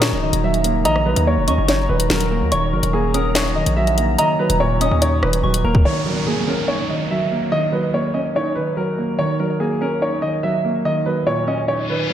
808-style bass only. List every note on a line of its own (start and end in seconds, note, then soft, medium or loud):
0.00 0.14 A#2 loud
0.12 0.32 C#1 loud
0.33 0.87 D#1 loud
0.85 1.15 A#1 loud
1.16 1.39 D#2 loud
1.37 1.49 E1 loud
1.48 1.58 D#2 loud
1.58 1.88 F#1 loud
1.89 2.09 D#1 loud
2.10 2.43 D#1 loud
2.41 2.51 D#2 loud
2.52 2.74 D#1 loud
2.73 2.83 F#1 loud
2.83 3.63 D#1 loud
3.66 4.16 A#1 loud
4.50 4.90 D#1 loud
4.91 5.21 D#2 loud
5.23 5.43 D#1 loud
5.43 5.63 D#1 loud
5.64 5.84 D#1 loud